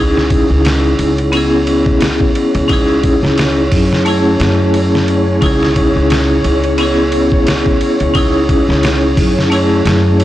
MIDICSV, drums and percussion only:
0, 0, Header, 1, 2, 480
1, 0, Start_track
1, 0, Key_signature, 4, "minor"
1, 0, Tempo, 681818
1, 1897, Time_signature, 4, 2, 24, 8
1, 7210, End_track
2, 0, Start_track
2, 0, Title_t, "Drums"
2, 122, Note_on_c, 9, 38, 46
2, 193, Note_off_c, 9, 38, 0
2, 214, Note_on_c, 9, 51, 69
2, 215, Note_on_c, 9, 36, 100
2, 284, Note_off_c, 9, 51, 0
2, 285, Note_off_c, 9, 36, 0
2, 456, Note_on_c, 9, 51, 87
2, 467, Note_on_c, 9, 38, 110
2, 526, Note_off_c, 9, 51, 0
2, 538, Note_off_c, 9, 38, 0
2, 695, Note_on_c, 9, 51, 67
2, 766, Note_off_c, 9, 51, 0
2, 833, Note_on_c, 9, 51, 42
2, 904, Note_off_c, 9, 51, 0
2, 934, Note_on_c, 9, 51, 85
2, 1005, Note_off_c, 9, 51, 0
2, 1175, Note_on_c, 9, 51, 65
2, 1246, Note_off_c, 9, 51, 0
2, 1311, Note_on_c, 9, 36, 86
2, 1381, Note_off_c, 9, 36, 0
2, 1412, Note_on_c, 9, 51, 82
2, 1423, Note_on_c, 9, 38, 109
2, 1482, Note_off_c, 9, 51, 0
2, 1494, Note_off_c, 9, 38, 0
2, 1552, Note_on_c, 9, 36, 94
2, 1622, Note_off_c, 9, 36, 0
2, 1656, Note_on_c, 9, 51, 63
2, 1727, Note_off_c, 9, 51, 0
2, 1792, Note_on_c, 9, 51, 48
2, 1863, Note_off_c, 9, 51, 0
2, 1896, Note_on_c, 9, 51, 89
2, 1897, Note_on_c, 9, 36, 112
2, 1966, Note_off_c, 9, 51, 0
2, 1967, Note_off_c, 9, 36, 0
2, 2136, Note_on_c, 9, 51, 70
2, 2137, Note_on_c, 9, 36, 91
2, 2207, Note_off_c, 9, 36, 0
2, 2207, Note_off_c, 9, 51, 0
2, 2285, Note_on_c, 9, 38, 44
2, 2356, Note_off_c, 9, 38, 0
2, 2377, Note_on_c, 9, 51, 83
2, 2388, Note_on_c, 9, 38, 113
2, 2447, Note_off_c, 9, 51, 0
2, 2459, Note_off_c, 9, 38, 0
2, 2616, Note_on_c, 9, 46, 79
2, 2617, Note_on_c, 9, 36, 92
2, 2686, Note_off_c, 9, 46, 0
2, 2687, Note_off_c, 9, 36, 0
2, 2764, Note_on_c, 9, 38, 41
2, 2834, Note_off_c, 9, 38, 0
2, 2857, Note_on_c, 9, 51, 85
2, 2927, Note_off_c, 9, 51, 0
2, 3095, Note_on_c, 9, 51, 66
2, 3107, Note_on_c, 9, 38, 111
2, 3166, Note_off_c, 9, 51, 0
2, 3177, Note_off_c, 9, 38, 0
2, 3336, Note_on_c, 9, 51, 79
2, 3406, Note_off_c, 9, 51, 0
2, 3486, Note_on_c, 9, 38, 54
2, 3556, Note_off_c, 9, 38, 0
2, 3576, Note_on_c, 9, 51, 62
2, 3647, Note_off_c, 9, 51, 0
2, 3815, Note_on_c, 9, 51, 92
2, 3816, Note_on_c, 9, 36, 111
2, 3885, Note_off_c, 9, 51, 0
2, 3887, Note_off_c, 9, 36, 0
2, 3962, Note_on_c, 9, 38, 47
2, 4033, Note_off_c, 9, 38, 0
2, 4054, Note_on_c, 9, 51, 70
2, 4056, Note_on_c, 9, 36, 90
2, 4125, Note_off_c, 9, 51, 0
2, 4126, Note_off_c, 9, 36, 0
2, 4296, Note_on_c, 9, 51, 85
2, 4307, Note_on_c, 9, 38, 116
2, 4366, Note_off_c, 9, 51, 0
2, 4377, Note_off_c, 9, 38, 0
2, 4536, Note_on_c, 9, 51, 67
2, 4606, Note_off_c, 9, 51, 0
2, 4672, Note_on_c, 9, 51, 43
2, 4742, Note_off_c, 9, 51, 0
2, 4772, Note_on_c, 9, 51, 89
2, 4843, Note_off_c, 9, 51, 0
2, 5012, Note_on_c, 9, 51, 67
2, 5083, Note_off_c, 9, 51, 0
2, 5152, Note_on_c, 9, 36, 92
2, 5222, Note_off_c, 9, 36, 0
2, 5257, Note_on_c, 9, 51, 87
2, 5268, Note_on_c, 9, 38, 104
2, 5327, Note_off_c, 9, 51, 0
2, 5338, Note_off_c, 9, 38, 0
2, 5392, Note_on_c, 9, 36, 94
2, 5463, Note_off_c, 9, 36, 0
2, 5496, Note_on_c, 9, 51, 64
2, 5567, Note_off_c, 9, 51, 0
2, 5633, Note_on_c, 9, 51, 47
2, 5703, Note_off_c, 9, 51, 0
2, 5736, Note_on_c, 9, 51, 85
2, 5737, Note_on_c, 9, 36, 104
2, 5806, Note_off_c, 9, 51, 0
2, 5807, Note_off_c, 9, 36, 0
2, 5977, Note_on_c, 9, 36, 96
2, 5977, Note_on_c, 9, 51, 68
2, 6047, Note_off_c, 9, 36, 0
2, 6048, Note_off_c, 9, 51, 0
2, 6125, Note_on_c, 9, 38, 46
2, 6196, Note_off_c, 9, 38, 0
2, 6217, Note_on_c, 9, 51, 87
2, 6228, Note_on_c, 9, 38, 115
2, 6288, Note_off_c, 9, 51, 0
2, 6299, Note_off_c, 9, 38, 0
2, 6457, Note_on_c, 9, 36, 91
2, 6458, Note_on_c, 9, 46, 81
2, 6527, Note_off_c, 9, 36, 0
2, 6528, Note_off_c, 9, 46, 0
2, 6608, Note_on_c, 9, 38, 42
2, 6678, Note_off_c, 9, 38, 0
2, 6700, Note_on_c, 9, 51, 86
2, 6771, Note_off_c, 9, 51, 0
2, 6937, Note_on_c, 9, 51, 66
2, 6949, Note_on_c, 9, 38, 117
2, 7008, Note_off_c, 9, 51, 0
2, 7019, Note_off_c, 9, 38, 0
2, 7179, Note_on_c, 9, 51, 83
2, 7210, Note_off_c, 9, 51, 0
2, 7210, End_track
0, 0, End_of_file